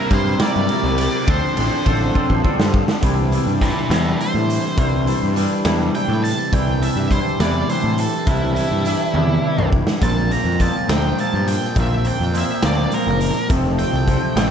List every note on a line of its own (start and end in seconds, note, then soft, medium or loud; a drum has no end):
0.00 0.10 A#4 loud
0.10 0.34 G2 loud
0.10 0.39 C3 loud
0.10 0.39 G3 loud
0.10 0.40 A#3 loud
0.10 0.40 E4 loud
0.10 0.40 A#4 medium
0.10 0.40 C5 medium
0.10 kick medium
0.10 ride medium
0.40 0.68 C3 loud
0.40 0.67 G3 medium
0.40 0.68 A#3 medium
0.40 0.68 E4 loud
0.40 0.68 A#4 loud
0.40 1.32 D5 medium
0.40 snare loud
0.40 ride loud
0.56 0.67 G2 medium
0.68 1.26 C3 medium
0.68 1.26 G3 medium
0.68 1.26 A#3 medium
0.68 1.26 E4 medium
0.68 1.27 A#4 medium
0.68 ride medium
0.84 1.07 C2 medium
0.98 ride medium
1.27 1.39 D2 loud
1.27 1.55 D3 medium
1.27 1.55 F3 medium
1.27 1.56 C4 medium
1.27 1.56 D4 loud
1.27 1.56 A4 medium
1.27 2.71 C5 medium
1.27 kick loud
1.27 ride medium
1.56 1.69 A1 medium
1.56 1.84 D3 medium
1.56 1.84 F3 medium
1.56 1.85 C4 medium
1.56 1.85 D4 loud
1.56 1.85 A4 medium
1.56 ride medium
1.85 2.09 A1 loud
1.85 2.13 D3 medium
1.85 2.14 F3 medium
1.85 2.14 C4 medium
1.85 2.14 D4 loud
1.85 2.14 A4 medium
1.85 kick medium
1.85 ride medium
2.14 2.42 D3 medium
2.14 2.42 F3 medium
2.14 2.43 C4 loud
2.14 2.43 D4 loud
2.14 2.44 A4 loud
2.14 kick medium
2.30 2.42 A1 medium
2.30 kick medium
2.44 3.01 D3 medium
2.44 3.01 F3 medium
2.44 3.01 C4 medium
2.44 3.02 D4 medium
2.44 3.02 A4 medium
2.44 kick medium
2.60 2.82 G2 medium
2.60 snare medium
2.74 kick medium
2.88 snare medium
3.02 3.37 C2 medium
3.02 3.65 C3 medium
3.02 3.61 E3 medium
3.02 3.33 G3 medium
3.02 3.33 D4 medium
3.02 3.32 E4 medium
3.02 kick loud
3.02 closed hi-hat loud
3.32 3.61 G3 medium
3.32 3.62 D4 medium
3.32 3.62 E4 medium
3.32 closed hi-hat medium
3.47 3.70 G2 medium
3.61 3.92 E3 medium
3.61 3.91 G3 medium
3.61 3.91 D4 medium
3.61 3.90 E4 medium
3.61 3.91 A#4 medium
3.61 3.90 D5 medium
3.61 kick medium
3.61 closed hi-hat medium
3.90 4.13 E2 loud
3.90 4.77 C3 medium
3.90 4.18 E3 medium
3.90 4.19 G3 medium
3.90 4.20 D4 medium
3.90 4.20 E4 medium
3.90 4.19 E4 medium
3.90 4.20 C5 medium
3.90 snare loud
3.90 closed hi-hat loud
4.19 4.77 E3 medium
4.19 4.78 G3 medium
4.19 4.78 D4 medium
4.19 4.78 E4 medium
4.19 5.34 C5 medium
4.19 closed hi-hat medium
4.34 4.57 A2 medium
4.50 closed hi-hat medium
4.77 5.12 C2 loud
4.77 5.40 C3 medium
4.77 5.35 E3 medium
4.77 5.08 G3 medium
4.77 5.07 D4 medium
4.77 5.06 E4 medium
4.77 kick loud
4.77 closed hi-hat medium
5.06 5.36 G3 medium
5.06 5.36 D4 medium
5.06 5.37 E4 medium
5.06 closed hi-hat medium
5.23 5.45 G2 medium
5.36 5.66 E3 medium
5.36 5.65 G3 medium
5.36 5.65 D4 medium
5.36 5.65 E4 medium
5.36 closed hi-hat medium
5.65 5.88 E2 loud
5.65 6.52 C3 medium
5.65 5.94 E3 medium
5.65 5.95 G3 medium
5.65 5.96 D4 medium
5.65 5.96 E4 medium
5.65 snare loud
5.65 closed hi-hat medium
5.94 6.52 E3 medium
5.94 6.53 G3 medium
5.94 6.53 D4 medium
5.94 6.53 E4 medium
5.94 6.23 G5 medium
5.94 closed hi-hat medium
6.08 6.31 A2 medium
6.24 6.52 A5 medium
6.24 closed hi-hat medium
6.52 6.87 C2 medium
6.52 7.15 C3 medium
6.52 7.10 E3 medium
6.52 6.83 G3 medium
6.52 6.82 D4 medium
6.52 6.82 E4 loud
6.52 6.82 G5 medium
6.52 kick loud
6.52 closed hi-hat medium
6.82 7.11 G3 medium
6.82 7.11 D4 medium
6.82 7.12 E4 medium
6.82 7.11 E5 medium
6.82 closed hi-hat medium
6.96 7.19 G2 medium
7.10 7.40 E3 medium
7.10 7.40 G3 medium
7.10 7.39 D4 medium
7.10 7.39 E4 medium
7.10 7.40 C5 medium
7.10 kick medium
7.10 closed hi-hat medium
7.40 7.63 E2 loud
7.40 7.99 C3 medium
7.40 7.68 E3 medium
7.40 7.68 G3 medium
7.40 7.69 D4 medium
7.40 7.69 E4 medium
7.40 7.69 D5 medium
7.40 snare loud
7.40 closed hi-hat medium
7.69 8.26 E3 medium
7.69 8.27 G3 medium
7.69 8.28 D4 medium
7.69 8.28 E4 medium
7.69 7.98 C5 medium
7.69 closed hi-hat medium
7.84 8.06 A2 medium
7.98 8.28 A4 medium
7.98 closed hi-hat medium
8.27 8.61 C2 loud
8.27 8.85 C3 medium
8.27 8.83 E3 medium
8.27 8.57 G3 medium
8.27 8.56 D4 loud
8.27 8.54 E4 medium
8.27 8.56 E4 medium
8.27 kick loud
8.27 closed hi-hat medium
8.55 8.84 G3 medium
8.55 8.85 D4 medium
8.55 9.69 E4 loud
8.55 8.85 E4 medium
8.55 closed hi-hat medium
8.71 8.94 G2 medium
8.85 9.14 E3 medium
8.85 9.14 G3 medium
8.85 9.13 D4 medium
8.85 9.13 E4 medium
8.85 closed hi-hat medium
9.14 9.37 E2 loud
9.14 9.73 C3 medium
9.14 9.42 E3 medium
9.14 9.43 G3 medium
9.14 9.43 D4 medium
9.14 9.44 E4 medium
9.14 high tom medium
9.29 high tom medium
9.43 10.00 E3 medium
9.43 10.00 G3 medium
9.43 10.01 D4 medium
9.43 10.01 E4 medium
9.58 9.81 C2 medium
9.58 mid tom medium
9.73 kick medium
9.87 snare medium
10.01 10.36 A#1 loud
10.01 10.59 A#2 medium
10.01 10.31 F3 medium
10.01 10.31 A#3 medium
10.01 10.30 C4 medium
10.01 10.31 A5 loud
10.01 kick loud
10.01 closed hi-hat medium
10.30 10.60 F3 medium
10.30 10.60 A#3 medium
10.30 10.61 C4 medium
10.30 10.60 A#5 medium
10.30 closed hi-hat medium
10.44 10.67 F2 medium
10.60 10.89 A#2 medium
10.60 10.89 F3 medium
10.60 10.88 A#3 medium
10.60 10.88 C4 medium
10.60 10.89 A5 medium
10.60 kick medium
10.60 closed hi-hat medium
10.89 11.11 D2 medium
10.89 11.16 A#2 medium
10.89 11.18 F3 medium
10.89 11.17 A#3 medium
10.89 11.18 C4 medium
10.89 11.18 G5 medium
10.89 snare loud
10.89 closed hi-hat medium
11.17 11.74 A#2 medium
11.17 11.76 F3 medium
11.17 11.76 A#3 medium
11.17 11.77 C4 medium
11.17 11.47 A5 medium
11.17 closed hi-hat medium
11.34 11.56 G2 medium
11.48 11.76 G5 medium
11.48 closed hi-hat medium
11.75 12.10 A#1 loud
11.75 12.31 A#2 medium
11.75 12.06 F3 medium
11.75 12.04 A#3 medium
11.75 12.04 C4 loud
11.75 kick loud
11.75 closed hi-hat medium
11.80 12.06 E5 loud
12.04 12.33 F3 medium
12.04 12.33 A#3 medium
12.04 12.34 C4 medium
12.04 12.34 G5 medium
12.04 closed hi-hat medium
12.20 12.42 F2 medium
12.33 12.63 A#2 medium
12.33 12.63 F3 medium
12.33 12.62 A#3 medium
12.33 12.62 C4 medium
12.33 closed hi-hat medium
12.38 12.64 E5 medium
12.62 12.86 D2 medium
12.62 12.91 A#2 medium
12.62 12.92 F3 medium
12.62 12.92 A#3 medium
12.62 12.93 C4 medium
12.62 12.92 D5 medium
12.62 snare loud
12.62 closed hi-hat medium
12.91 13.48 A#2 medium
12.91 13.49 F3 medium
12.91 13.49 A#3 medium
12.91 13.50 C4 medium
12.91 13.49 A#4 loud
12.91 closed hi-hat medium
13.07 13.29 F#1 medium
13.21 closed hi-hat medium
13.49 13.84 F1 medium
13.49 14.37 F2 medium
13.49 14.06 C3 medium
13.49 13.80 F3 medium
13.49 13.79 A3 medium
13.49 13.78 C4 loud
13.49 kick loud
13.49 closed hi-hat medium
13.78 14.07 F3 medium
13.78 14.08 A3 medium
13.78 14.08 C4 medium
13.78 14.51 G5 loud
13.78 closed hi-hat medium
13.93 14.16 C2 medium
14.07 14.36 C3 medium
14.07 14.36 F3 medium
14.07 14.36 A3 medium
14.07 14.35 C4 medium
14.07 kick medium
14.07 closed hi-hat medium
14.36 14.51 A1 loud
14.36 14.51 F2 medium
14.36 14.51 C3 medium
14.36 14.51 F3 medium
14.36 14.51 A3 medium
14.36 14.51 C4 medium
14.36 snare loud
14.36 closed hi-hat loud